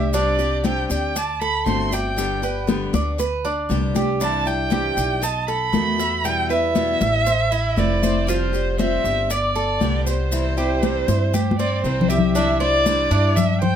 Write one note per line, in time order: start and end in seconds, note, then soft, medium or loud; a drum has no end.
0.00 0.83 C2 medium
0.00 0.13 B3 soft
0.00 0.13 D4 soft
0.00 0.12 G4 soft
0.00 0.13 G4 medium
0.00 0.10 E5 medium
0.13 0.38 C3 medium
0.13 0.38 G3 medium
0.13 0.38 C4 medium
0.13 0.63 D4 medium
0.13 0.38 D4 medium
0.13 0.37 G4 medium
0.13 0.62 D5 medium
0.13 high conga soft
0.13 maracas medium
0.38 0.64 C4 soft
0.38 0.64 D4 soft
0.38 0.63 G4 medium
0.38 high conga soft
0.38 maracas soft
0.64 0.89 C3 medium
0.64 0.89 G3 medium
0.64 0.89 C4 medium
0.64 0.89 D4 medium
0.64 1.14 G4 medium
0.64 0.88 G4 medium
0.64 0.89 G5 medium
0.64 high conga medium
0.64 maracas soft
0.90 1.62 D2 medium
0.90 1.15 C4 soft
0.90 1.15 D4 soft
0.90 1.14 G4 soft
0.90 1.18 G5 medium
0.90 high conga soft
0.90 maracas medium
1.15 1.40 D5 medium
1.15 1.41 A5 medium
1.15 muted steel-string acoustic guitar stroke medium
1.15 high conga soft
1.15 maracas medium
1.41 1.91 A4 medium
1.41 1.65 B5 medium
1.41 high conga soft
1.41 maracas soft
1.66 2.87 G1 medium
1.66 1.91 D3 medium
1.66 1.91 A3 medium
1.66 1.91 C4 medium
1.66 1.90 F#4 medium
1.66 1.94 C6 medium
1.66 high conga medium
1.66 maracas soft
1.91 2.17 A3 soft
1.91 2.16 C4 soft
1.91 2.16 F#4 soft
1.91 2.42 D5 medium
1.91 2.69 G5 medium
1.91 high conga soft
1.91 maracas medium
2.16 2.41 D3 soft
2.16 2.42 G3 medium
2.16 2.42 B3 medium
2.16 2.42 D4 medium
2.16 2.41 G4 medium
2.16 high conga soft
2.16 maracas medium
2.42 2.67 B3 soft
2.42 2.67 D4 soft
2.42 2.67 G4 soft
2.42 2.92 B4 medium
2.42 high conga soft
2.42 maracas soft
2.67 2.92 D3 medium
2.67 2.93 G3 medium
2.67 2.93 B3 medium
2.67 2.93 D4 medium
2.67 2.92 G4 medium
2.67 high conga medium
2.67 maracas soft
2.93 3.66 D2 medium
2.93 3.18 B3 soft
2.93 3.18 D4 soft
2.93 3.18 G4 soft
2.93 3.18 D5 medium
2.93 high conga medium
2.93 maracas medium
3.18 3.44 B4 medium
3.18 muted steel-string acoustic guitar stroke medium
3.18 high conga soft
3.18 maracas medium
3.45 3.94 D4 medium
3.45 high conga soft
3.45 maracas soft
3.69 4.91 C2 medium
3.69 3.94 D3 medium
3.69 3.94 G3 medium
3.69 3.95 B3 medium
3.69 3.95 D4 medium
3.69 3.93 G4 medium
3.69 high conga medium
3.69 maracas soft
3.95 4.21 B3 soft
3.95 4.20 D4 soft
3.95 4.19 G4 soft
3.95 4.20 G4 medium
3.95 high conga medium
3.95 maracas medium
4.20 4.45 C3 medium
4.20 4.45 E3 medium
4.20 4.46 G3 medium
4.20 4.70 D4 medium
4.20 4.45 D4 medium
4.20 4.44 E4 medium
4.20 4.48 A5 medium
4.20 high conga soft
4.20 maracas medium
4.45 4.70 G3 soft
4.45 4.71 D4 soft
4.45 4.70 E4 soft
4.45 5.24 G5 medium
4.45 high conga soft
4.45 maracas soft
4.70 4.95 C3 medium
4.70 4.96 E3 medium
4.70 4.96 G3 medium
4.70 4.96 D4 medium
4.70 4.95 E4 medium
4.70 5.21 G4 medium
4.70 high conga medium
4.70 maracas soft
4.96 5.70 B1 medium
4.96 5.22 G3 soft
4.96 5.22 D4 soft
4.96 5.21 E4 soft
4.96 high conga soft
4.96 maracas medium
5.21 5.48 D#5 medium
5.21 5.48 A5 medium
5.21 muted steel-string acoustic guitar stroke medium
5.21 high conga soft
5.21 maracas medium
5.48 5.98 A4 medium
5.48 6.27 B5 medium
5.48 high conga soft
5.48 maracas soft
5.72 6.94 E2 medium
5.72 5.98 B2 medium
5.72 5.98 D#3 medium
5.72 5.98 A3 medium
5.72 5.98 B3 medium
5.72 5.97 F#4 medium
5.72 high conga medium
5.72 maracas soft
5.98 6.24 A3 soft
5.98 6.24 B3 soft
5.98 6.23 F#4 soft
5.98 6.49 E5 medium
5.98 high conga soft
5.98 maracas medium
6.24 6.49 B2 medium
6.24 6.49 E3 medium
6.24 6.49 G3 medium
6.24 6.49 B3 medium
6.24 6.48 E4 medium
6.24 6.50 G5 loud
6.24 high conga soft
6.24 maracas medium
6.49 6.75 G3 soft
6.49 6.75 B3 soft
6.49 6.74 E4 soft
6.49 7.00 B4 medium
6.49 7.80 E5 loud
6.49 high conga soft
6.49 maracas soft
6.75 7.00 B2 medium
6.75 7.00 E3 medium
6.75 7.00 G3 medium
6.75 7.00 B3 medium
6.75 6.99 E4 medium
6.75 high conga medium
6.75 maracas soft
7.00 7.73 A1 medium
7.00 7.26 G3 soft
7.00 7.26 B3 soft
7.00 7.25 E4 soft
7.00 7.26 E5 medium
7.00 high conga medium
7.00 maracas medium
7.26 7.51 C5 medium
7.26 muted steel-string acoustic guitar stroke medium
7.26 high conga soft
7.26 maracas medium
7.52 8.01 E4 medium
7.52 high conga soft
7.52 maracas soft
7.76 8.98 F1 medium
7.76 8.01 E3 medium
7.76 8.02 A3 medium
7.76 8.02 C4 medium
7.76 8.01 E4 medium
7.76 8.31 D5 medium
7.76 high conga medium
7.76 maracas soft
8.02 8.28 A3 soft
8.02 8.27 C4 soft
8.02 8.27 E4 soft
8.02 8.28 C5 medium
8.02 high conga medium
8.02 maracas medium
8.27 8.52 F3 medium
8.27 8.53 G3 medium
8.27 8.53 C4 medium
8.27 8.78 F4 medium
8.27 8.52 G4 medium
8.27 8.80 C5 medium
8.27 high conga soft
8.27 maracas medium
8.53 8.78 G3 soft
8.53 8.78 C4 soft
8.53 8.78 G4 soft
8.53 high conga soft
8.53 maracas soft
8.78 9.03 F3 medium
8.78 9.04 G3 medium
8.78 9.04 C4 medium
8.78 9.03 G4 medium
8.78 9.29 C5 medium
8.78 9.32 E5 medium
8.78 high conga medium
8.78 maracas soft
9.04 9.77 G1 medium
9.04 9.29 G3 soft
9.04 9.29 C4 soft
9.04 9.29 G4 soft
9.04 high conga soft
9.04 maracas medium
9.30 9.55 D5 medium
9.30 10.07 D5 medium
9.30 muted steel-string acoustic guitar stroke medium
9.30 high conga soft
9.30 maracas medium
9.56 10.05 A4 medium
9.56 high conga soft
9.56 maracas soft
9.80 11.02 C2 medium
9.80 10.05 D3 medium
9.80 10.05 G3 medium
9.80 10.06 B3 medium
9.80 10.05 G4 medium
9.80 high conga medium
9.80 maracas soft
10.06 10.31 G3 soft
10.06 10.31 B3 soft
10.06 10.31 G4 soft
10.06 10.56 C5 medium
10.06 11.56 C5 medium
10.06 high conga soft
10.06 maracas medium
10.31 10.56 C3 medium
10.31 10.56 E3 medium
10.31 10.57 G3 medium
10.31 10.57 C4 medium
10.31 10.56 E4 medium
10.31 high conga soft
10.31 maracas medium
10.57 10.83 G3 soft
10.57 10.82 C4 soft
10.57 10.81 E4 soft
10.57 11.07 G4 medium
10.57 high conga soft
10.57 maracas soft
10.83 11.07 C3 medium
10.83 11.07 E3 medium
10.83 11.08 G3 medium
10.83 11.08 C4 medium
10.83 11.07 E4 medium
10.83 high conga medium
10.83 maracas soft
11.08 11.80 G2 medium
11.08 11.33 G3 soft
11.08 11.33 C4 soft
11.08 11.33 E4 soft
11.08 11.33 C5 medium
11.08 high conga medium
11.08 maracas medium
11.33 11.58 G4 medium
11.33 muted steel-string acoustic guitar stroke medium
11.33 high conga medium
11.33 maracas medium
11.51 high conga medium
11.59 12.09 C4 medium
11.59 11.83 D5 medium
11.59 maracas soft
11.84 13.05 C2 medium
11.84 12.09 C3 medium
11.84 12.09 E3 medium
11.84 12.09 G3 medium
11.84 12.10 C4 medium
11.84 12.09 E4 medium
11.84 12.11 C5 medium
11.84 maracas soft
12.01 low conga medium
12.09 12.35 G3 soft
12.09 12.35 C4 soft
12.09 12.34 E4 soft
12.09 12.34 G4 medium
12.09 12.34 E5 medium
12.09 maracas medium
12.19 low conga medium
12.35 12.59 C3 medium
12.35 12.60 E3 medium
12.35 12.60 G3 medium
12.35 12.60 D4 medium
12.35 12.59 E4 medium
12.35 12.59 E5 medium
12.35 high conga soft
12.35 maracas medium
12.60 12.86 G3 soft
12.60 12.86 D4 soft
12.60 12.85 E4 soft
12.60 13.10 C5 medium
12.60 13.37 D5 loud
12.60 high conga soft
12.86 13.10 C3 medium
12.86 13.11 E3 medium
12.86 13.11 G3 medium
12.86 13.11 D4 medium
12.86 13.10 E4 medium
12.86 high conga medium
12.86 maracas medium
13.11 13.76 G2 medium
13.11 13.36 G3 soft
13.11 13.61 D4 medium
13.11 13.36 D4 soft
13.11 13.36 E4 soft
13.11 high conga soft
13.11 maracas soft
13.36 13.61 E5 medium
13.36 muted steel-string acoustic guitar stroke medium
13.36 high conga soft
13.36 low conga medium
13.36 maracas medium
13.61 13.76 C5 medium
13.61 13.76 G5 loud
13.61 high conga soft
13.61 low conga medium